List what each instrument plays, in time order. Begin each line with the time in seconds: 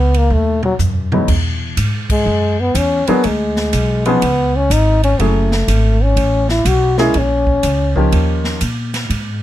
Already playing: upright bass C#2, trombone B3
0.14 trombone A#3, ride
0.30 upright bass D#2, trombone A3, mid tom
0.63 trombone F#3, mid tom
0.79 upright bass F#2, floor tom, hi-hat pedal
1.12 grand piano E2 F#3 G#3 B3 D#4, mid tom
1.28 upright bass E2, kick, crash
1.77 upright bass G#2, hi-hat pedal, ride
2.10 trombone G#3, kick, crash
2.26 upright bass F#2
2.60 trombone B3
2.75 upright bass E2, trombone C#4, hi-hat pedal, ride
3.07 grand piano F#3 A#3 B3 D4 G#4, trombone B3, muted upright bass stroke, ride
3.24 upright bass D2, trombone G#3, ride
3.56 snare
3.73 upright bass B1, hi-hat pedal, ride
4.05 grand piano F3 B3 C#4 D#4 G#4, trombone B3, ride
4.22 upright bass C#2, ride
4.56 trombone C#4
4.70 upright bass G#1, trombone D#4, hi-hat pedal, ride
5.03 trombone C#4, ride
5.19 upright bass F#1, grand piano F#3 A3 C#4 E4 G#4, trombone A3, ride
5.52 snare
5.68 upright bass G#1, hi-hat pedal, ride
6.03 trombone C#4
6.16 upright bass A1, ride
6.49 trombone E4, snare
6.65 upright bass B1, trombone F#4, hi-hat pedal, ride
6.98 grand piano G#3 A#3 C#4 E4 G#4, trombone E4, snare
7.14 upright bass A#1, trombone C#4, ride
7.47 kick
7.63 upright bass C#2, hi-hat pedal, ride
7.96 grand piano F3 A#3 C#4 D#4 G4, kick
8.12 upright bass D#2, ride
8.44 snare
8.61 upright bass A#2, hi-hat pedal, ride
8.94 snare, ride
9.10 upright bass G#2, ride